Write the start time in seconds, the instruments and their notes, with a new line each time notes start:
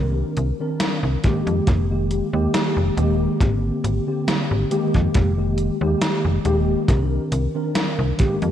Already playing: fm bass C2, tine electric piano D#3 C4 D4 A#4
0.37 fm bass C2, closed hi-hat
0.60 tine electric piano D#3 C4 D4 A#4
0.80 snare, closed hi-hat
1.03 fm bass C2
1.23 tine electric piano D#3 G#3 A#3 G4, kick, closed hi-hat
1.47 fm bass F2, closed hi-hat
1.67 fm bass F1, kick, closed hi-hat
1.90 tine electric piano D#3 G#3 A#3 G4
2.11 closed hi-hat
2.33 fm bass D#2, tine electric piano D#3 G#3 A#3 G4
2.54 snare, closed hi-hat
2.77 fm bass F1
2.97 fm bass D#1, tine electric piano D#3 G#3 A#3 G4, closed hi-hat
3.41 fm bass G#1, tine electric piano D3 A#3 C4 G4, kick, closed hi-hat
3.84 fm bass G#1, closed hi-hat
4.07 tine electric piano D3 A#3 C4 G4
4.28 snare, closed hi-hat
4.51 fm bass G#1
4.70 tine electric piano D#3 G#3 A#3 G4, closed hi-hat
4.94 fm bass F2, kick, closed hi-hat
5.14 fm bass F1, kick, closed hi-hat
5.37 tine electric piano D#3 G#3 A#3 G4
5.58 closed hi-hat
5.81 fm bass D#2, tine electric piano D#3 G#3 A#3 G4
6.02 snare, closed hi-hat
6.25 fm bass F1
6.45 fm bass D#1, tine electric piano D#3 G#3 A#3 G4, closed hi-hat
6.88 fm bass C2, tine electric piano D#3 C4 D4 A#4, kick, closed hi-hat
7.32 fm bass C2, closed hi-hat
7.54 tine electric piano D#3 C4 D4 A#4
7.75 snare, closed hi-hat
7.99 fm bass C2
8.18 tine electric piano D#3 G#3 A#3 G4, kick, closed hi-hat
8.42 fm bass F2, closed hi-hat